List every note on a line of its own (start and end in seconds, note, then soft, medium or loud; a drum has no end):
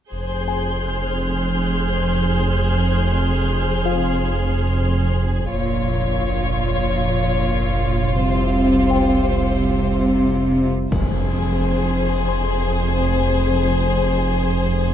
0.11 5.48 F1 medium
0.11 5.48 F1 soft
0.11 5.48 F2 soft
0.11 5.48 G#4 soft
0.11 5.48 C5 soft
0.11 5.15 C6 soft
0.11 3.79 G6 soft
0.47 2.45 G#4 soft
0.47 2.46 G#5 soft
0.81 5.15 F6 soft
3.85 5.83 F4 soft
3.85 5.83 F5 soft
5.52 10.88 F1 medium
5.52 8.18 A#1 soft
5.52 8.18 A#2 soft
5.52 10.67 F4 soft
5.52 8.18 C#5 soft
8.21 10.67 C2 soft
8.21 10.67 C3 soft
8.21 10.67 C5 soft
8.90 10.88 G5 soft
10.91 14.94 F1 soft
10.91 14.94 F2 soft
10.91 14.94 G#4 soft
10.91 14.94 C5 soft
10.91 impact soft
10.91 triangle soft
12.28 14.25 C5 soft
12.28 14.26 C6 soft